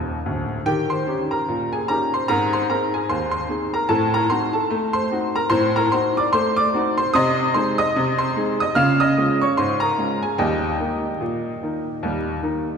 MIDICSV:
0, 0, Header, 1, 2, 480
1, 0, Start_track
1, 0, Tempo, 810811
1, 396, Time_signature, 2, 2, 24, 8
1, 7562, End_track
2, 0, Start_track
2, 0, Title_t, "Upright piano"
2, 0, Program_c, 0, 0
2, 0, Note_on_c, 0, 27, 65
2, 0, Note_on_c, 0, 39, 62
2, 94, Note_off_c, 0, 39, 0
2, 96, Note_off_c, 0, 27, 0
2, 153, Note_on_c, 0, 38, 61
2, 155, Note_on_c, 0, 26, 65
2, 335, Note_off_c, 0, 38, 0
2, 336, Note_off_c, 0, 26, 0
2, 388, Note_on_c, 0, 51, 91
2, 391, Note_on_c, 0, 79, 103
2, 396, Note_on_c, 0, 67, 77
2, 527, Note_off_c, 0, 67, 0
2, 532, Note_on_c, 0, 84, 82
2, 534, Note_off_c, 0, 79, 0
2, 539, Note_on_c, 0, 72, 68
2, 596, Note_off_c, 0, 51, 0
2, 634, Note_on_c, 0, 61, 48
2, 635, Note_on_c, 0, 63, 47
2, 639, Note_on_c, 0, 67, 55
2, 726, Note_off_c, 0, 84, 0
2, 761, Note_off_c, 0, 72, 0
2, 767, Note_off_c, 0, 61, 0
2, 768, Note_off_c, 0, 63, 0
2, 771, Note_off_c, 0, 67, 0
2, 775, Note_on_c, 0, 82, 69
2, 780, Note_on_c, 0, 70, 49
2, 878, Note_on_c, 0, 46, 74
2, 1002, Note_off_c, 0, 70, 0
2, 1004, Note_off_c, 0, 82, 0
2, 1022, Note_on_c, 0, 80, 73
2, 1029, Note_on_c, 0, 68, 59
2, 1082, Note_off_c, 0, 46, 0
2, 1115, Note_on_c, 0, 82, 90
2, 1116, Note_off_c, 0, 68, 0
2, 1119, Note_off_c, 0, 80, 0
2, 1120, Note_on_c, 0, 61, 50
2, 1121, Note_on_c, 0, 63, 45
2, 1126, Note_on_c, 0, 67, 61
2, 1126, Note_on_c, 0, 70, 58
2, 1251, Note_off_c, 0, 61, 0
2, 1251, Note_off_c, 0, 63, 0
2, 1252, Note_off_c, 0, 70, 0
2, 1256, Note_off_c, 0, 67, 0
2, 1257, Note_off_c, 0, 82, 0
2, 1266, Note_on_c, 0, 84, 82
2, 1273, Note_on_c, 0, 72, 61
2, 1351, Note_on_c, 0, 82, 104
2, 1356, Note_on_c, 0, 44, 99
2, 1358, Note_off_c, 0, 72, 0
2, 1360, Note_on_c, 0, 70, 77
2, 1361, Note_off_c, 0, 84, 0
2, 1369, Note_on_c, 0, 60, 69
2, 1489, Note_off_c, 0, 70, 0
2, 1495, Note_off_c, 0, 82, 0
2, 1498, Note_off_c, 0, 60, 0
2, 1498, Note_on_c, 0, 84, 86
2, 1504, Note_on_c, 0, 72, 62
2, 1560, Note_off_c, 0, 44, 0
2, 1593, Note_off_c, 0, 72, 0
2, 1596, Note_on_c, 0, 60, 57
2, 1596, Note_on_c, 0, 82, 80
2, 1597, Note_off_c, 0, 84, 0
2, 1597, Note_on_c, 0, 63, 52
2, 1601, Note_on_c, 0, 70, 64
2, 1603, Note_on_c, 0, 68, 53
2, 1728, Note_off_c, 0, 60, 0
2, 1729, Note_off_c, 0, 63, 0
2, 1729, Note_off_c, 0, 70, 0
2, 1733, Note_off_c, 0, 68, 0
2, 1737, Note_off_c, 0, 82, 0
2, 1740, Note_on_c, 0, 80, 73
2, 1749, Note_on_c, 0, 68, 56
2, 1832, Note_on_c, 0, 84, 86
2, 1833, Note_on_c, 0, 39, 72
2, 1836, Note_off_c, 0, 68, 0
2, 1837, Note_on_c, 0, 72, 67
2, 1838, Note_off_c, 0, 80, 0
2, 1953, Note_off_c, 0, 84, 0
2, 1962, Note_on_c, 0, 84, 91
2, 1965, Note_off_c, 0, 72, 0
2, 1974, Note_on_c, 0, 72, 63
2, 2038, Note_off_c, 0, 39, 0
2, 2065, Note_on_c, 0, 60, 53
2, 2068, Note_on_c, 0, 63, 52
2, 2069, Note_on_c, 0, 68, 56
2, 2196, Note_off_c, 0, 84, 0
2, 2198, Note_off_c, 0, 72, 0
2, 2200, Note_off_c, 0, 60, 0
2, 2201, Note_off_c, 0, 63, 0
2, 2203, Note_off_c, 0, 68, 0
2, 2212, Note_on_c, 0, 82, 79
2, 2216, Note_on_c, 0, 70, 64
2, 2301, Note_on_c, 0, 81, 109
2, 2303, Note_on_c, 0, 45, 101
2, 2307, Note_on_c, 0, 69, 83
2, 2308, Note_off_c, 0, 70, 0
2, 2313, Note_off_c, 0, 82, 0
2, 2313, Note_on_c, 0, 60, 62
2, 2441, Note_off_c, 0, 69, 0
2, 2445, Note_off_c, 0, 60, 0
2, 2449, Note_off_c, 0, 81, 0
2, 2451, Note_on_c, 0, 82, 95
2, 2458, Note_on_c, 0, 70, 65
2, 2512, Note_off_c, 0, 45, 0
2, 2544, Note_on_c, 0, 84, 99
2, 2547, Note_on_c, 0, 60, 55
2, 2549, Note_off_c, 0, 70, 0
2, 2549, Note_on_c, 0, 63, 55
2, 2550, Note_on_c, 0, 72, 69
2, 2551, Note_on_c, 0, 66, 63
2, 2552, Note_off_c, 0, 82, 0
2, 2681, Note_off_c, 0, 60, 0
2, 2682, Note_off_c, 0, 63, 0
2, 2683, Note_off_c, 0, 72, 0
2, 2683, Note_on_c, 0, 81, 84
2, 2684, Note_off_c, 0, 66, 0
2, 2690, Note_off_c, 0, 84, 0
2, 2692, Note_on_c, 0, 69, 66
2, 2785, Note_on_c, 0, 57, 83
2, 2916, Note_off_c, 0, 69, 0
2, 2916, Note_off_c, 0, 81, 0
2, 2921, Note_on_c, 0, 84, 103
2, 2927, Note_on_c, 0, 72, 73
2, 2992, Note_off_c, 0, 57, 0
2, 3024, Note_on_c, 0, 60, 52
2, 3028, Note_on_c, 0, 63, 59
2, 3031, Note_on_c, 0, 66, 61
2, 3153, Note_off_c, 0, 72, 0
2, 3154, Note_off_c, 0, 84, 0
2, 3158, Note_off_c, 0, 60, 0
2, 3161, Note_off_c, 0, 63, 0
2, 3163, Note_off_c, 0, 66, 0
2, 3171, Note_on_c, 0, 82, 92
2, 3175, Note_on_c, 0, 70, 68
2, 3254, Note_on_c, 0, 84, 122
2, 3258, Note_on_c, 0, 45, 104
2, 3261, Note_on_c, 0, 72, 99
2, 3266, Note_off_c, 0, 70, 0
2, 3270, Note_on_c, 0, 60, 70
2, 3271, Note_off_c, 0, 82, 0
2, 3396, Note_off_c, 0, 72, 0
2, 3402, Note_off_c, 0, 60, 0
2, 3403, Note_off_c, 0, 84, 0
2, 3410, Note_on_c, 0, 82, 100
2, 3416, Note_on_c, 0, 70, 78
2, 3467, Note_off_c, 0, 45, 0
2, 3504, Note_on_c, 0, 84, 95
2, 3507, Note_off_c, 0, 70, 0
2, 3507, Note_on_c, 0, 60, 62
2, 3507, Note_on_c, 0, 72, 71
2, 3510, Note_off_c, 0, 82, 0
2, 3510, Note_on_c, 0, 63, 67
2, 3511, Note_on_c, 0, 66, 62
2, 3640, Note_off_c, 0, 60, 0
2, 3640, Note_off_c, 0, 72, 0
2, 3642, Note_off_c, 0, 63, 0
2, 3643, Note_off_c, 0, 66, 0
2, 3648, Note_off_c, 0, 84, 0
2, 3654, Note_on_c, 0, 86, 98
2, 3661, Note_on_c, 0, 74, 79
2, 3745, Note_on_c, 0, 84, 115
2, 3748, Note_off_c, 0, 74, 0
2, 3748, Note_on_c, 0, 57, 84
2, 3752, Note_off_c, 0, 86, 0
2, 3752, Note_on_c, 0, 72, 86
2, 3881, Note_off_c, 0, 72, 0
2, 3886, Note_on_c, 0, 86, 111
2, 3888, Note_off_c, 0, 84, 0
2, 3893, Note_on_c, 0, 74, 80
2, 3952, Note_off_c, 0, 57, 0
2, 3988, Note_on_c, 0, 60, 63
2, 3992, Note_on_c, 0, 63, 72
2, 3992, Note_on_c, 0, 66, 60
2, 4079, Note_off_c, 0, 86, 0
2, 4114, Note_off_c, 0, 74, 0
2, 4120, Note_off_c, 0, 60, 0
2, 4123, Note_off_c, 0, 63, 0
2, 4123, Note_off_c, 0, 66, 0
2, 4130, Note_on_c, 0, 84, 102
2, 4137, Note_on_c, 0, 72, 77
2, 4224, Note_on_c, 0, 87, 127
2, 4226, Note_off_c, 0, 72, 0
2, 4226, Note_off_c, 0, 84, 0
2, 4231, Note_on_c, 0, 48, 123
2, 4235, Note_on_c, 0, 84, 100
2, 4237, Note_on_c, 0, 75, 102
2, 4433, Note_off_c, 0, 48, 0
2, 4453, Note_off_c, 0, 87, 0
2, 4454, Note_off_c, 0, 84, 0
2, 4455, Note_off_c, 0, 75, 0
2, 4466, Note_on_c, 0, 84, 99
2, 4467, Note_on_c, 0, 56, 63
2, 4470, Note_on_c, 0, 63, 72
2, 4474, Note_on_c, 0, 68, 65
2, 4475, Note_on_c, 0, 72, 86
2, 4599, Note_off_c, 0, 56, 0
2, 4601, Note_off_c, 0, 63, 0
2, 4602, Note_off_c, 0, 72, 0
2, 4604, Note_off_c, 0, 68, 0
2, 4607, Note_off_c, 0, 84, 0
2, 4607, Note_on_c, 0, 87, 117
2, 4612, Note_on_c, 0, 75, 90
2, 4713, Note_on_c, 0, 48, 103
2, 4799, Note_off_c, 0, 87, 0
2, 4832, Note_off_c, 0, 75, 0
2, 4845, Note_on_c, 0, 84, 100
2, 4852, Note_on_c, 0, 72, 82
2, 4914, Note_off_c, 0, 48, 0
2, 4949, Note_on_c, 0, 56, 65
2, 4951, Note_on_c, 0, 63, 61
2, 4956, Note_on_c, 0, 68, 72
2, 5072, Note_off_c, 0, 72, 0
2, 5073, Note_off_c, 0, 84, 0
2, 5080, Note_off_c, 0, 56, 0
2, 5081, Note_off_c, 0, 63, 0
2, 5085, Note_off_c, 0, 68, 0
2, 5093, Note_on_c, 0, 87, 110
2, 5104, Note_on_c, 0, 75, 74
2, 5181, Note_on_c, 0, 89, 127
2, 5185, Note_on_c, 0, 49, 120
2, 5188, Note_off_c, 0, 75, 0
2, 5188, Note_on_c, 0, 77, 106
2, 5189, Note_off_c, 0, 87, 0
2, 5193, Note_on_c, 0, 65, 71
2, 5317, Note_off_c, 0, 77, 0
2, 5323, Note_off_c, 0, 65, 0
2, 5324, Note_off_c, 0, 89, 0
2, 5328, Note_on_c, 0, 87, 112
2, 5334, Note_on_c, 0, 75, 85
2, 5389, Note_off_c, 0, 49, 0
2, 5432, Note_on_c, 0, 56, 61
2, 5434, Note_on_c, 0, 61, 54
2, 5436, Note_on_c, 0, 65, 64
2, 5554, Note_off_c, 0, 75, 0
2, 5556, Note_off_c, 0, 87, 0
2, 5563, Note_off_c, 0, 56, 0
2, 5564, Note_off_c, 0, 61, 0
2, 5566, Note_off_c, 0, 65, 0
2, 5574, Note_on_c, 0, 85, 92
2, 5581, Note_on_c, 0, 73, 75
2, 5667, Note_off_c, 0, 73, 0
2, 5668, Note_on_c, 0, 84, 100
2, 5669, Note_on_c, 0, 44, 79
2, 5670, Note_off_c, 0, 85, 0
2, 5676, Note_on_c, 0, 72, 76
2, 5802, Note_on_c, 0, 82, 98
2, 5803, Note_off_c, 0, 72, 0
2, 5808, Note_off_c, 0, 84, 0
2, 5814, Note_on_c, 0, 70, 63
2, 5873, Note_off_c, 0, 44, 0
2, 5908, Note_on_c, 0, 56, 59
2, 5909, Note_on_c, 0, 61, 52
2, 5911, Note_on_c, 0, 65, 51
2, 6034, Note_off_c, 0, 82, 0
2, 6035, Note_off_c, 0, 70, 0
2, 6041, Note_off_c, 0, 56, 0
2, 6041, Note_off_c, 0, 61, 0
2, 6043, Note_off_c, 0, 65, 0
2, 6053, Note_on_c, 0, 80, 77
2, 6059, Note_on_c, 0, 68, 63
2, 6147, Note_on_c, 0, 79, 89
2, 6148, Note_off_c, 0, 68, 0
2, 6148, Note_on_c, 0, 39, 100
2, 6150, Note_on_c, 0, 67, 65
2, 6151, Note_off_c, 0, 80, 0
2, 6151, Note_on_c, 0, 75, 68
2, 6159, Note_on_c, 0, 55, 61
2, 6289, Note_off_c, 0, 55, 0
2, 6354, Note_off_c, 0, 39, 0
2, 6393, Note_on_c, 0, 51, 52
2, 6394, Note_on_c, 0, 58, 49
2, 6396, Note_on_c, 0, 63, 55
2, 6525, Note_off_c, 0, 51, 0
2, 6526, Note_off_c, 0, 58, 0
2, 6527, Note_off_c, 0, 63, 0
2, 6635, Note_on_c, 0, 46, 72
2, 6839, Note_off_c, 0, 46, 0
2, 6882, Note_on_c, 0, 51, 44
2, 6884, Note_on_c, 0, 58, 47
2, 6888, Note_on_c, 0, 63, 48
2, 7012, Note_off_c, 0, 51, 0
2, 7014, Note_off_c, 0, 58, 0
2, 7017, Note_off_c, 0, 63, 0
2, 7120, Note_on_c, 0, 39, 83
2, 7133, Note_on_c, 0, 55, 60
2, 7261, Note_off_c, 0, 55, 0
2, 7308, Note_off_c, 0, 79, 0
2, 7324, Note_off_c, 0, 39, 0
2, 7355, Note_on_c, 0, 51, 44
2, 7357, Note_on_c, 0, 58, 49
2, 7362, Note_on_c, 0, 63, 56
2, 7488, Note_off_c, 0, 51, 0
2, 7490, Note_off_c, 0, 58, 0
2, 7493, Note_off_c, 0, 63, 0
2, 7562, Note_off_c, 0, 67, 0
2, 7562, Note_off_c, 0, 75, 0
2, 7562, End_track
0, 0, End_of_file